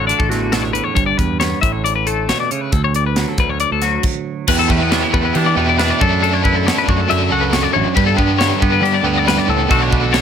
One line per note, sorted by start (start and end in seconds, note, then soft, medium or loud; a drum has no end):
0.00 0.12 A1 medium
0.00 2.73 D3 medium
0.00 0.30 A3 medium
0.00 0.94 F#4 medium
0.07 2.55 D4 medium
0.07 0.19 D5 medium
0.07 closed hi-hat medium
0.19 0.79 A1 medium
0.19 0.30 A4 medium
0.19 kick medium
0.30 0.94 E2 medium
0.30 0.94 A3 medium
0.30 0.52 F#4 medium
0.30 snare soft
0.30 closed hi-hat medium
0.52 0.74 B2 medium
0.52 0.63 A4 medium
0.52 snare loud
0.52 closed hi-hat medium
0.62 0.73 C#5 medium
0.73 0.97 A2 medium
0.73 0.84 B4 medium
0.73 closed hi-hat medium
0.84 0.94 C#5 medium
0.94 1.13 G1 medium
0.94 1.59 G2 medium
0.94 1.06 C#5 medium
0.94 kick loud
0.94 closed hi-hat medium
1.06 1.18 D5 medium
1.18 1.53 E2 medium
1.18 1.39 B4 medium
1.18 kick medium
1.18 closed hi-hat medium
1.40 1.60 B3 medium
1.40 1.61 C#5 medium
1.40 snare medium
1.40 closed hi-hat medium
1.61 2.31 A1 medium
1.61 2.28 A2 medium
1.61 1.72 E5 medium
1.61 kick loud
1.61 closed hi-hat medium
1.72 1.84 C#5 medium
1.84 1.95 D5 medium
1.84 closed hi-hat medium
1.96 2.07 B4 medium
2.07 2.70 A3 medium
2.07 2.29 A4 medium
2.07 closed hi-hat medium
2.28 2.50 B2 medium
2.28 2.40 C#5 medium
2.28 snare loud
2.28 closed hi-hat medium
2.40 2.51 D5 medium
2.51 2.73 C#3 medium
2.51 2.61 C#5 medium
2.51 closed hi-hat medium
2.61 2.72 B4 medium
2.72 3.24 D2 loud
2.72 3.37 D2 medium
2.72 2.83 A4 medium
2.72 kick loud
2.72 closed hi-hat medium
2.84 2.95 C#5 medium
2.94 3.06 D5 medium
2.94 closed hi-hat medium
3.06 3.29 B4 medium
3.16 3.83 F#3 medium
3.16 snare loud
3.16 closed hi-hat medium
3.29 3.39 A4 medium
3.38 3.64 D2 medium
3.38 4.48 D2 medium
3.38 3.50 B4 medium
3.38 kick loud
3.38 closed hi-hat medium
3.50 3.60 C#5 medium
3.60 3.71 D5 medium
3.60 closed hi-hat medium
3.72 3.97 D2 medium
3.72 3.83 A4 medium
3.82 5.80 F#3 medium
3.82 4.04 F#4 medium
3.82 snare soft
3.82 closed hi-hat medium
4.03 kick loud
4.03 crash medium
4.48 4.65 E2 medium
4.48 5.99 E2 medium
4.48 5.56 E3 medium
4.48 5.57 B3 loud
4.48 5.57 E4 loud
4.48 5.56 G4 loud
4.48 4.59 B4 medium
4.48 kick loud
4.48 crash loud
4.48 crash medium
4.59 4.70 A4 medium
4.70 5.04 E2 medium
4.70 4.82 A3 medium
4.70 4.92 B4 medium
4.70 kick medium
4.82 5.13 B3 medium
4.92 5.99 E3 medium
4.92 5.03 D4 medium
4.92 5.13 C#5 medium
4.92 snare loud
4.92 crash medium
5.03 5.36 E4 medium
5.14 5.31 E2 medium
5.14 5.24 A3 medium
5.14 5.24 B4 medium
5.14 kick medium
5.24 5.56 B3 soft
5.24 5.35 B4 medium
5.35 5.53 E3 loud
5.35 5.79 D4 medium
5.35 5.46 G4 medium
5.35 crash medium
5.46 5.57 D5 medium
5.56 5.91 E2 medium
5.56 5.98 B2 medium
5.56 5.78 E3 medium
5.56 5.98 B3 medium
5.56 5.79 B3 medium
5.56 5.78 E4 medium
5.56 5.78 G4 medium
5.56 5.69 B4 medium
5.69 5.78 D5 medium
5.78 6.00 E3 medium
5.78 6.00 B3 medium
5.78 6.45 D4 medium
5.78 6.01 E4 medium
5.78 6.01 G4 medium
5.78 5.90 B4 medium
5.78 snare loud
5.78 crash medium
5.90 6.01 D5 medium
6.00 7.09 F#2 medium
6.00 6.69 F#2 medium
6.00 7.08 F#3 medium
6.00 7.08 A3 loud
6.00 7.10 D4 medium
6.00 6.22 A4 medium
6.00 7.10 A4 medium
6.00 kick loud
6.23 6.33 A4 medium
6.23 crash medium
6.33 6.44 C#5 medium
6.44 6.88 E4 medium
6.44 6.56 B4 medium
6.44 kick medium
6.56 6.67 A4 medium
6.67 6.77 C#5 medium
6.67 snare loud
6.67 crash medium
6.78 6.89 B4 medium
6.88 7.05 F#2 loud
6.88 7.32 F#4 medium
6.88 7.00 C#5 medium
6.88 kick medium
7.00 7.11 A4 medium
7.08 7.73 F#2 medium
7.08 7.28 F#2 loud
7.08 7.33 F#3 medium
7.08 7.30 A3 medium
7.08 7.32 D4 medium
7.08 7.30 A4 medium
7.08 7.32 E5 medium
7.08 crash medium
7.31 7.66 C#2 medium
7.31 7.94 F#3 medium
7.31 7.75 A3 medium
7.31 7.96 D4 medium
7.31 8.00 F#4 medium
7.31 7.73 A4 medium
7.31 7.43 F#5 medium
7.41 7.53 B4 medium
7.53 7.63 C#5 medium
7.53 snare loud
7.53 crash medium
7.63 7.73 D5 medium
7.73 7.84 A1 loud
7.73 7.95 F#2 medium
7.73 7.96 C#5 medium
7.95 9.25 G2 medium
7.95 8.14 G2 loud
7.95 9.03 G3 loud
7.95 9.06 B3 loud
7.95 9.05 D4 loud
7.95 9.03 G4 loud
7.95 8.06 B4 loud
7.95 kick loud
7.95 crash medium
8.07 8.17 A4 medium
8.17 8.53 G2 loud
8.17 8.61 B3 medium
8.17 8.39 B4 medium
8.17 kick medium
8.39 9.02 D3 medium
8.39 8.61 C#5 medium
8.39 snare loud
8.39 crash medium
8.61 8.79 G2 medium
8.61 9.03 B3 medium
8.61 8.71 B4 medium
8.61 kick medium
8.72 8.83 B4 medium
8.82 8.99 G3 loud
8.82 8.94 G4 medium
8.82 crash medium
8.94 9.06 D5 medium
9.03 9.38 D2 medium
9.03 9.46 D3 medium
9.03 9.70 B3 medium
9.03 9.28 B3 medium
9.03 9.28 D4 medium
9.03 9.25 G4 medium
9.03 9.18 B4 medium
9.07 9.25 G3 medium
9.18 9.27 D5 medium
9.26 9.49 G2 medium
9.26 9.69 G3 medium
9.26 9.71 B3 medium
9.26 9.72 D4 medium
9.26 9.70 G4 medium
9.26 9.38 B4 medium
9.26 snare loud
9.26 crash medium
9.38 9.49 D5 medium
9.47 9.66 C#2 medium
9.47 9.68 A2 medium
9.47 9.70 A4 medium
9.68 10.21 B1 loud
9.68 10.13 B2 medium
9.68 10.21 B2 medium
9.68 10.13 D3 medium
9.68 10.21 F#3 medium
9.68 10.21 A3 medium
9.68 10.21 B3 loud
9.68 9.92 D4 medium
9.68 10.21 D4 loud
9.68 10.14 F#4 medium
9.68 9.82 A4 loud
9.68 kick loud
9.68 crash medium
9.73 10.21 F#4 loud
9.82 9.93 C#5 medium
9.92 10.21 D4 medium
9.92 10.02 B4 medium
9.92 kick medium
10.02 10.13 A4 medium
10.13 10.21 D3 medium
10.13 10.21 C#5 medium
10.13 snare loud
10.13 crash medium